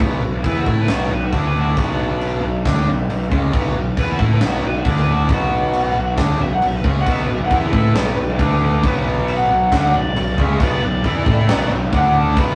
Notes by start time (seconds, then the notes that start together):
0.00 B1 B2 F#3 B3, kick, crash
0.22 B1 B2 F#3
0.44 E2 E3 B3 E4 B4, kick, crash
0.56 F#4
0.66 A2 A3 E4 A4, kick
0.70 E4
0.81 B4
0.88 B1 B2 F#3 B3 F#4, snare, crash
1.02 E4
1.10 B1 B2 F#3 B4
1.25 F#4
1.32 D2 D3 A3 D4, kick, crash
1.37 E4
1.47 B4
1.59 F#4
1.69 E4
1.77 B1 B2 F#3 B3 D4, kick, crash
2.21 crash
2.43 B1 B2 F#3
2.65 D2 D3 A3 D4, kick, snare, crash
2.86 B1 B2 F#3
3.09 B1 B2 F#3, crash
3.31 C#2 C#3 G#3 C#4, kick
3.53 B1 B2 F#3 B3, kick, crash
3.74 B1 B2 F#3
3.97 E2 E3 B3 E4 B4, kick, crash
4.11 F#4
4.19 A2 A3 E4 A4, kick
4.33 B4
4.39 B1 B2 F#3 B3, snare, crash
4.44 F#4
4.56 E4
4.62 B1 B2 F#3
4.67 B4
4.78 F#4
4.85 D2 D3 A3 D4, kick, crash
4.89 E4
4.97 snare
5.01 B4
5.11 F#4
5.23 E4
5.29 B1 B2 F#3 B3 F#4, kick, crash
5.73 crash
5.95 B1 B2 F#3
6.17 D2 D3 A3 D4, kick, snare, crash
6.39 B1 B2 F#3
6.43 E5
6.54 F#5
6.62 B1 B2 F#3, crash
6.66 E5
6.76 B4
6.84 C#2 C#3 G#3 C#4, kick
6.88 E5
7.00 F#5
7.06 B1 B2 F#3 B3, kick, crash
7.11 E5
7.23 B4
7.28 B1 B2 F#3
7.35 E5
7.45 F#5
7.50 E2 E3 B3 E4, kick, crash
7.56 E5
7.67 B4
7.72 A2 A3 E4 A4, kick
7.77 B4
7.94 B1 B2 F#3 B3, snare, crash
8.16 B1 B2 F#3
8.39 D2 D3 A3 D4, kick, crash
8.83 B1 B2 F#3 B3, kick, crash
9.28 F#5, crash
9.49 B1 B2 F#3
9.72 D2 D3 A3 D4, kick, snare, crash
9.93 B1 B2 F#3 D5
10.16 B1 B2 F#3 D5, crash
10.38 C#2 C#3 G#3 C#4 E5, kick
10.60 B1 B2 F#3 B3 D5, kick, crash
10.82 B1 B2 F#3 D5
11.04 E2 E3 B3 E4, kick, crash
11.26 A2 A3 E4 A4, kick
11.48 B1 B2 F#3 B3, snare, crash
11.71 B1 B2 F#3
11.93 D2 D3 A3 D4 F#5, kick, crash
12.18 A5
12.37 B1 B2 F#3 B3 B5, kick, crash